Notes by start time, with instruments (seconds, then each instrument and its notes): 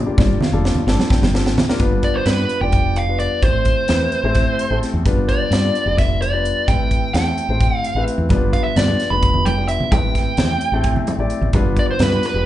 0.06 grand piano G3 A#3 D4 F4 G4
0.18 fretless electric bass G1, grand piano D5, kick, snare, high conga
0.30 low conga
0.41 grand piano F5, snare, low conga
0.52 fretless electric bass F1, grand piano G3 A#3 D4 F4 A4
0.65 snare
0.75 muted fretless electric bass stroke, low conga
0.87 fretless electric bass G1, grand piano G3 A#3 D4 F4 A4 A5, snare
0.99 snare, high conga
1.10 grand piano G5, muted fretless electric bass stroke, kick, snare, low conga
1.22 fretless electric bass G1, snare, low conga
1.34 grand piano G3 A#3 D4 F4 A4, snare, low conga
1.46 snare
1.57 fretless electric bass A#1, snare, low conga
1.69 grand piano G3 A#3 D4 F4 A#4, snare
1.79 fretless electric bass G1, grand piano G3 B3 D4 F4 B4, kick, closed hi-hat
1.91 fretless electric bass G1
2.03 lead electric guitar D5, kick, closed hi-hat
2.14 lead electric guitar C5, muted fretless electric bass stroke
2.26 fretless electric bass G2, grand piano G3 B3 D4 F4 B4, lead electric guitar B4, snare, closed hi-hat
2.49 closed hi-hat
2.61 fretless electric bass F1, grand piano G3 B3 D4 F4 D5, lead electric guitar G5
2.72 kick, closed hi-hat
2.96 lead electric guitar F5, closed hi-hat
3.08 grand piano G3 B3 D4 F4 B4
3.20 lead electric guitar D5, closed hi-hat
3.42 fretless electric bass A1, grand piano A3 C4 E4 G4 C5, lead electric guitar C5, kick, closed hi-hat
3.54 fretless electric bass A1
3.65 kick, closed hi-hat
3.88 fretless electric bass E2, grand piano A3 C4 E4 G4 B4, snare, closed hi-hat
4.12 closed hi-hat
4.23 fretless electric bass A1, grand piano A3 C4 E4 G4 C5
4.35 kick, snare, closed hi-hat
4.59 closed hi-hat
4.70 fretless electric bass A1, grand piano A3 C4 E4 G4 A4
4.82 grand piano E5, snare, closed hi-hat
4.94 fretless electric bass E2
5.05 fretless electric bass G1, grand piano G3 B3 D4 F4 B4, kick, closed hi-hat
5.17 fretless electric bass G1
5.29 lead electric guitar D5, kick, closed hi-hat
5.41 muted fretless electric bass stroke
5.51 fretless electric bass G2, grand piano G3 B3 D4 F4 D5, snare, closed hi-hat
5.75 closed hi-hat
5.86 fretless electric bass F1, grand piano G3 B3 D4 F4 G4
5.98 lead electric guitar E5, kick, snare, closed hi-hat
6.22 lead electric guitar D5, closed hi-hat
6.33 grand piano G3 B3 D4 F4 B4
6.45 closed hi-hat
6.68 fretless electric bass A1, grand piano A3 C4 E4 G4 B4, lead electric guitar G5, kick, closed hi-hat
6.79 fretless electric bass A1
6.91 kick, closed hi-hat
7.14 fretless electric bass E2, grand piano A3 C4 E4 G4 A4, lead electric guitar G5, snare, closed hi-hat
7.38 closed hi-hat
7.49 fretless electric bass A1, grand piano A3 C4 E4 G4 C5
7.61 kick, closed hi-hat
7.78 lead electric guitar F5
7.84 closed hi-hat
7.95 fretless electric bass A1, grand piano A3 C4 E4 G4 B4
8.08 closed hi-hat
8.18 fretless electric bass E2
8.29 fretless electric bass G1, grand piano G3 B3 D4 F4 B4, kick, closed hi-hat, high conga
8.41 fretless electric bass G1, low conga
8.53 lead electric guitar F5, kick, closed hi-hat
8.64 lead electric guitar E5, muted fretless electric bass stroke, low conga
8.76 fretless electric bass G2, grand piano G3 B3 D4 F4 B4, lead electric guitar D5, snare, closed hi-hat, low conga
8.88 high conga, low conga
9.00 snare, closed hi-hat
9.10 fretless electric bass F1, grand piano G3 B3 D4 F4 B4, lead electric guitar B5
9.23 kick, closed hi-hat
9.34 low conga
9.45 lead electric guitar G5, closed hi-hat, high conga
9.58 grand piano G3 B3 D4 F4 G4
9.68 lead electric guitar E5, closed hi-hat
9.80 low conga
9.92 fretless electric bass A1, grand piano A3 C4 E4 G4 B4, lead electric guitar G5, kick, closed hi-hat, high conga
10.03 fretless electric bass A1, low conga
10.15 kick, snare, closed hi-hat
10.27 low conga
10.37 fretless electric bass E2, grand piano A3 C4 E4 G4 C5, snare, closed hi-hat, low conga
10.61 closed hi-hat
10.72 fretless electric bass A1, grand piano A3 C4 E4 G4 A4
10.84 kick, closed hi-hat
10.96 low conga
11.07 closed hi-hat, high conga
11.18 fretless electric bass A1, grand piano A3 C4 E4 G4 D5
11.30 closed hi-hat
11.41 fretless electric bass A1, low conga
11.53 fretless electric bass G1, grand piano G3 B3 D4 F4 B4, kick, closed hi-hat, high conga
11.65 fretless electric bass G1, low conga
11.77 lead electric guitar D5, kick, closed hi-hat
11.89 lead electric guitar C5, muted fretless electric bass stroke, low conga
11.99 fretless electric bass G2, grand piano G3 B3 D4 F4 B4, lead electric guitar B4, snare, closed hi-hat, low conga
12.13 high conga, low conga
12.23 lead electric guitar B4, snare, closed hi-hat
12.34 fretless electric bass F1, grand piano G3 B3 D4 F4 G4